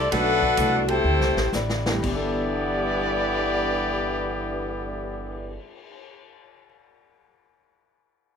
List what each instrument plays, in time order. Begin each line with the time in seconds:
Already playing: upright bass C2, trombone section G3, trumpet section C4 G4 A4 D5
0.11 upright bass B1, steel-string acoustic guitar B2 A3, grand piano F#3 A3 B3 D4 F#4, trombone section A3 D4 F#4, trumpet section D4 A4 B4 F#5, kick, snare, ride
0.15 steel-string acoustic guitar D4 F#4
0.42 kick
0.57 upright bass C2, steel-string acoustic guitar B2 A3 D4 F#4, kick, hi-hat pedal, ride
0.88 trombone section A3 C4 G4, trumpet section E4 A4 C5 G5, ride
1.04 upright bass D2, steel-string acoustic guitar D3 G3 C4 E4
1.19 upright bass C2, snare
1.36 upright bass A1, snare
1.53 upright bass A1, steel-string acoustic guitar D3 G3 C4 E4, snare, hi-hat pedal
1.69 snare
1.86 grand piano E3 A3 B3 D4 G4, snare
1.91 grand piano G2
1.97 steel-string acoustic guitar G2, grand piano G3
2.02 upright bass G1, trombone section G2 D3 E3 B3, steel-string acoustic guitar E3, grand piano B3, trumpet section B3 E4 G4 D5, kick, crash
2.09 steel-string acoustic guitar B3 D4, grand piano E4
2.16 grand piano A4
2.37 cymbal swell
2.54 grand piano D5
2.61 grand piano F#5
2.70 grand piano A5
2.79 grand piano D6
2.89 grand piano F#6
2.99 grand piano A6
3.11 grand piano D7